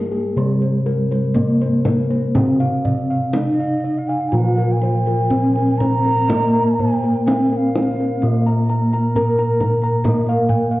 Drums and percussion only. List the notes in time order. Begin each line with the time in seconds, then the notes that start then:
0.86 kendang slap
1.12 kendang slap
1.36 kendang slap, kendang low
1.61 kendang slap
1.85 kendang slap, kendang high, kendang low
2.11 kendang slap
2.35 kendang high, kendang low
2.60 kendang slap
2.85 kendang slap, kendang low
3.33 kendang slap, kendang high
4.82 kendang slap
5.06 kendang slap
5.31 kendang slap, kendang low
5.56 kendang slap
5.81 kendang slap, kendang high, kendang low
6.05 kendang slap
6.30 kendang high, kendang low
6.55 kendang slap
6.79 kendang slap, kendang low
7.28 kendang slap, kendang high
7.75 kendang high
8.69 kendang slap
8.93 kendang slap
9.16 kendang slap, kendang low
9.38 kendang slap
9.60 kendang slap, kendang high, kendang low
9.82 kendang slap
10.05 kendang high, kendang low
10.27 kendang slap
10.49 kendang slap, kendang low